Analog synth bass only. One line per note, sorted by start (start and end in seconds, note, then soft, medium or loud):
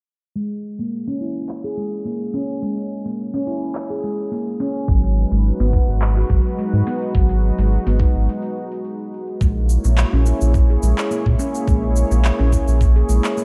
4.88 5.25 G#1 medium
5.32 5.52 G#1 medium
5.60 5.80 G#1 medium
5.88 6.24 G#1 medium
6.30 6.41 G#1 loud
6.73 6.83 G#2 medium
7.15 7.52 G#1 medium
7.58 7.78 G#1 medium
7.87 8.06 G#1 medium
8.15 8.28 G#1 medium
9.41 9.78 A#1 loud
9.85 10.05 A#1 medium
10.13 10.33 A#1 medium
10.42 10.77 A#1 loud
10.83 10.94 A#1 medium
11.26 11.36 A#2 medium
11.68 12.04 A#1 loud
12.11 12.31 A#1 medium
12.40 12.59 A#1 medium
12.68 13.03 A#1 loud
13.09 13.20 A#1 medium